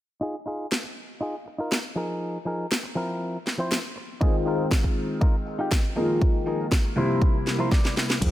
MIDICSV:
0, 0, Header, 1, 6, 480
1, 0, Start_track
1, 0, Tempo, 500000
1, 207, Time_signature, 4, 2, 24, 8
1, 7978, End_track
2, 0, Start_track
2, 0, Title_t, "Clean electric guitar"
2, 0, Program_c, 0, 27
2, 200, Note_on_c, 0, 63, 103
2, 209, Note_on_c, 0, 65, 92
2, 218, Note_on_c, 0, 68, 111
2, 327, Note_off_c, 0, 63, 0
2, 331, Note_off_c, 0, 65, 0
2, 336, Note_off_c, 0, 68, 0
2, 439, Note_on_c, 0, 63, 75
2, 448, Note_on_c, 0, 65, 72
2, 456, Note_on_c, 0, 68, 87
2, 625, Note_off_c, 0, 63, 0
2, 630, Note_off_c, 0, 65, 0
2, 634, Note_off_c, 0, 68, 0
2, 1157, Note_on_c, 0, 63, 81
2, 1166, Note_on_c, 0, 65, 73
2, 1175, Note_on_c, 0, 68, 89
2, 1286, Note_off_c, 0, 63, 0
2, 1290, Note_off_c, 0, 65, 0
2, 1294, Note_off_c, 0, 68, 0
2, 1520, Note_on_c, 0, 63, 80
2, 1530, Note_on_c, 0, 65, 72
2, 1539, Note_on_c, 0, 70, 89
2, 1704, Note_off_c, 0, 63, 0
2, 1709, Note_off_c, 0, 65, 0
2, 1714, Note_off_c, 0, 70, 0
2, 1877, Note_on_c, 0, 53, 88
2, 1883, Note_on_c, 0, 63, 79
2, 1889, Note_on_c, 0, 68, 81
2, 1894, Note_on_c, 0, 70, 92
2, 2269, Note_off_c, 0, 53, 0
2, 2272, Note_off_c, 0, 63, 0
2, 2275, Note_off_c, 0, 68, 0
2, 2278, Note_off_c, 0, 70, 0
2, 2355, Note_on_c, 0, 53, 79
2, 2362, Note_on_c, 0, 63, 71
2, 2367, Note_on_c, 0, 68, 72
2, 2373, Note_on_c, 0, 70, 86
2, 2543, Note_off_c, 0, 53, 0
2, 2547, Note_off_c, 0, 63, 0
2, 2549, Note_off_c, 0, 68, 0
2, 2552, Note_off_c, 0, 70, 0
2, 2835, Note_on_c, 0, 53, 87
2, 2841, Note_on_c, 0, 60, 78
2, 2847, Note_on_c, 0, 64, 80
2, 2853, Note_on_c, 0, 70, 100
2, 3228, Note_off_c, 0, 53, 0
2, 3231, Note_off_c, 0, 60, 0
2, 3234, Note_off_c, 0, 64, 0
2, 3237, Note_off_c, 0, 70, 0
2, 3441, Note_on_c, 0, 53, 83
2, 3446, Note_on_c, 0, 60, 76
2, 3452, Note_on_c, 0, 64, 74
2, 3458, Note_on_c, 0, 72, 90
2, 3624, Note_off_c, 0, 53, 0
2, 3627, Note_off_c, 0, 60, 0
2, 3630, Note_off_c, 0, 64, 0
2, 3633, Note_off_c, 0, 72, 0
2, 4039, Note_on_c, 0, 63, 103
2, 4048, Note_on_c, 0, 65, 97
2, 4057, Note_on_c, 0, 68, 115
2, 4166, Note_off_c, 0, 63, 0
2, 4171, Note_off_c, 0, 65, 0
2, 4175, Note_off_c, 0, 68, 0
2, 4279, Note_on_c, 0, 63, 79
2, 4289, Note_on_c, 0, 65, 74
2, 4298, Note_on_c, 0, 70, 86
2, 4465, Note_off_c, 0, 63, 0
2, 4470, Note_off_c, 0, 65, 0
2, 4474, Note_off_c, 0, 70, 0
2, 5001, Note_on_c, 0, 63, 83
2, 5010, Note_on_c, 0, 65, 77
2, 5018, Note_on_c, 0, 70, 92
2, 5127, Note_off_c, 0, 63, 0
2, 5132, Note_off_c, 0, 65, 0
2, 5136, Note_off_c, 0, 70, 0
2, 5363, Note_on_c, 0, 63, 84
2, 5372, Note_on_c, 0, 65, 75
2, 5382, Note_on_c, 0, 67, 94
2, 5546, Note_off_c, 0, 63, 0
2, 5550, Note_off_c, 0, 65, 0
2, 5555, Note_off_c, 0, 67, 0
2, 5719, Note_on_c, 0, 53, 90
2, 5724, Note_on_c, 0, 63, 81
2, 5730, Note_on_c, 0, 68, 81
2, 5736, Note_on_c, 0, 70, 98
2, 6110, Note_off_c, 0, 53, 0
2, 6112, Note_off_c, 0, 63, 0
2, 6115, Note_off_c, 0, 68, 0
2, 6118, Note_off_c, 0, 70, 0
2, 6202, Note_on_c, 0, 53, 81
2, 6206, Note_on_c, 0, 63, 74
2, 6213, Note_on_c, 0, 68, 74
2, 6219, Note_on_c, 0, 70, 88
2, 6386, Note_off_c, 0, 53, 0
2, 6389, Note_off_c, 0, 63, 0
2, 6392, Note_off_c, 0, 68, 0
2, 6395, Note_off_c, 0, 70, 0
2, 6681, Note_on_c, 0, 53, 90
2, 6688, Note_on_c, 0, 64, 82
2, 6693, Note_on_c, 0, 70, 79
2, 6699, Note_on_c, 0, 72, 101
2, 7071, Note_off_c, 0, 53, 0
2, 7074, Note_off_c, 0, 64, 0
2, 7077, Note_off_c, 0, 70, 0
2, 7080, Note_off_c, 0, 72, 0
2, 7282, Note_on_c, 0, 53, 82
2, 7287, Note_on_c, 0, 64, 79
2, 7294, Note_on_c, 0, 70, 78
2, 7299, Note_on_c, 0, 72, 92
2, 7405, Note_off_c, 0, 72, 0
2, 7465, Note_off_c, 0, 53, 0
2, 7467, Note_off_c, 0, 64, 0
2, 7471, Note_off_c, 0, 70, 0
2, 7978, End_track
3, 0, Start_track
3, 0, Title_t, "Grand piano"
3, 0, Program_c, 1, 0
3, 4043, Note_on_c, 1, 51, 83
3, 4048, Note_on_c, 1, 56, 80
3, 4054, Note_on_c, 1, 60, 81
3, 4059, Note_on_c, 1, 65, 93
3, 5679, Note_off_c, 1, 51, 0
3, 5681, Note_off_c, 1, 56, 0
3, 5684, Note_off_c, 1, 60, 0
3, 5687, Note_off_c, 1, 65, 0
3, 5721, Note_on_c, 1, 51, 79
3, 5727, Note_on_c, 1, 56, 72
3, 5732, Note_on_c, 1, 58, 70
3, 5738, Note_on_c, 1, 65, 85
3, 6637, Note_off_c, 1, 51, 0
3, 6641, Note_off_c, 1, 56, 0
3, 6643, Note_off_c, 1, 58, 0
3, 6646, Note_off_c, 1, 65, 0
3, 6678, Note_on_c, 1, 48, 88
3, 6683, Note_on_c, 1, 55, 84
3, 6689, Note_on_c, 1, 58, 80
3, 6694, Note_on_c, 1, 64, 97
3, 7836, Note_off_c, 1, 48, 0
3, 7839, Note_off_c, 1, 55, 0
3, 7841, Note_off_c, 1, 58, 0
3, 7844, Note_off_c, 1, 64, 0
3, 7880, Note_on_c, 1, 51, 87
3, 7886, Note_on_c, 1, 56, 78
3, 7891, Note_on_c, 1, 60, 80
3, 7897, Note_on_c, 1, 65, 93
3, 7978, Note_off_c, 1, 51, 0
3, 7978, Note_off_c, 1, 56, 0
3, 7978, Note_off_c, 1, 60, 0
3, 7978, Note_off_c, 1, 65, 0
3, 7978, End_track
4, 0, Start_track
4, 0, Title_t, "Fingered electric bass"
4, 0, Program_c, 2, 33
4, 7888, Note_on_c, 2, 41, 95
4, 7978, Note_off_c, 2, 41, 0
4, 7978, End_track
5, 0, Start_track
5, 0, Title_t, "Muted clean electric guitar strokes"
5, 802, Note_on_c, 9, 29, 31
5, 898, Note_off_c, 9, 29, 0
5, 1399, Note_on_c, 9, 29, 29
5, 1495, Note_off_c, 9, 29, 0
5, 2721, Note_on_c, 9, 29, 31
5, 2817, Note_off_c, 9, 29, 0
5, 3318, Note_on_c, 9, 29, 31
5, 3414, Note_off_c, 9, 29, 0
5, 3799, Note_on_c, 9, 29, 32
5, 3895, Note_off_c, 9, 29, 0
5, 4643, Note_on_c, 9, 29, 33
5, 4739, Note_off_c, 9, 29, 0
5, 5243, Note_on_c, 9, 29, 31
5, 5339, Note_off_c, 9, 29, 0
5, 6566, Note_on_c, 9, 29, 31
5, 6662, Note_off_c, 9, 29, 0
5, 7160, Note_on_c, 9, 29, 31
5, 7256, Note_off_c, 9, 29, 0
5, 7640, Note_on_c, 9, 29, 33
5, 7736, Note_off_c, 9, 29, 0
5, 7978, End_track
6, 0, Start_track
6, 0, Title_t, "Drums"
6, 690, Note_on_c, 9, 38, 113
6, 786, Note_off_c, 9, 38, 0
6, 1650, Note_on_c, 9, 38, 116
6, 1746, Note_off_c, 9, 38, 0
6, 2608, Note_on_c, 9, 38, 118
6, 2704, Note_off_c, 9, 38, 0
6, 3330, Note_on_c, 9, 38, 62
6, 3426, Note_off_c, 9, 38, 0
6, 3569, Note_on_c, 9, 38, 118
6, 3665, Note_off_c, 9, 38, 0
6, 4045, Note_on_c, 9, 36, 119
6, 4141, Note_off_c, 9, 36, 0
6, 4285, Note_on_c, 9, 54, 90
6, 4381, Note_off_c, 9, 54, 0
6, 4402, Note_on_c, 9, 54, 42
6, 4498, Note_off_c, 9, 54, 0
6, 4525, Note_on_c, 9, 36, 121
6, 4529, Note_on_c, 9, 38, 115
6, 4621, Note_off_c, 9, 36, 0
6, 4625, Note_off_c, 9, 38, 0
6, 4648, Note_on_c, 9, 36, 61
6, 4744, Note_off_c, 9, 36, 0
6, 4765, Note_on_c, 9, 54, 86
6, 4861, Note_off_c, 9, 54, 0
6, 4887, Note_on_c, 9, 54, 41
6, 4983, Note_off_c, 9, 54, 0
6, 5006, Note_on_c, 9, 36, 120
6, 5102, Note_off_c, 9, 36, 0
6, 5246, Note_on_c, 9, 54, 95
6, 5342, Note_off_c, 9, 54, 0
6, 5369, Note_on_c, 9, 54, 38
6, 5465, Note_off_c, 9, 54, 0
6, 5486, Note_on_c, 9, 36, 124
6, 5489, Note_on_c, 9, 38, 117
6, 5582, Note_off_c, 9, 36, 0
6, 5585, Note_off_c, 9, 38, 0
6, 5967, Note_on_c, 9, 36, 119
6, 6063, Note_off_c, 9, 36, 0
6, 6088, Note_on_c, 9, 54, 39
6, 6184, Note_off_c, 9, 54, 0
6, 6205, Note_on_c, 9, 54, 91
6, 6301, Note_off_c, 9, 54, 0
6, 6336, Note_on_c, 9, 54, 40
6, 6432, Note_off_c, 9, 54, 0
6, 6447, Note_on_c, 9, 36, 119
6, 6451, Note_on_c, 9, 38, 111
6, 6543, Note_off_c, 9, 36, 0
6, 6547, Note_off_c, 9, 38, 0
6, 6686, Note_on_c, 9, 54, 86
6, 6782, Note_off_c, 9, 54, 0
6, 6809, Note_on_c, 9, 54, 43
6, 6905, Note_off_c, 9, 54, 0
6, 6927, Note_on_c, 9, 36, 122
6, 7023, Note_off_c, 9, 36, 0
6, 7165, Note_on_c, 9, 54, 89
6, 7172, Note_on_c, 9, 38, 59
6, 7261, Note_off_c, 9, 54, 0
6, 7268, Note_off_c, 9, 38, 0
6, 7407, Note_on_c, 9, 36, 120
6, 7413, Note_on_c, 9, 38, 61
6, 7503, Note_off_c, 9, 36, 0
6, 7509, Note_off_c, 9, 38, 0
6, 7535, Note_on_c, 9, 38, 60
6, 7631, Note_off_c, 9, 38, 0
6, 7653, Note_on_c, 9, 38, 83
6, 7749, Note_off_c, 9, 38, 0
6, 7775, Note_on_c, 9, 38, 80
6, 7871, Note_off_c, 9, 38, 0
6, 7884, Note_on_c, 9, 54, 53
6, 7887, Note_on_c, 9, 36, 114
6, 7891, Note_on_c, 9, 42, 52
6, 7891, Note_on_c, 9, 49, 91
6, 7978, Note_off_c, 9, 36, 0
6, 7978, Note_off_c, 9, 42, 0
6, 7978, Note_off_c, 9, 49, 0
6, 7978, Note_off_c, 9, 54, 0
6, 7978, End_track
0, 0, End_of_file